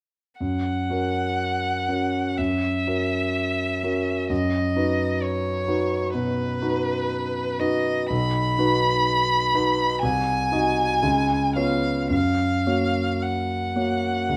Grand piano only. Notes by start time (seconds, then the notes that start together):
0.40 F#2
0.90 C#4 F#4 A#4
1.88 C#4 F#4 A#4
2.38 F#2
2.87 C#4 F#4 A#4
3.83 C#4 F#4 A#4
4.30 F#2
4.76 D#4 F#4 B4
5.68 D#4 F#4 B4
6.14 B2
6.62 D#4 F#4 B4
7.60 D#4 F#4 B4
8.10 B1
8.58 D#4 F#4 B4
9.54 D#4 F#4 B4
10.03 C2
10.52 D#4 F#4 D#5
11.03 C#2
11.56 B3 F4 C#5
12.10 F#2
12.67 A#3 F#4 C#5
13.76 A#3 F#4 C#5
14.29 C#2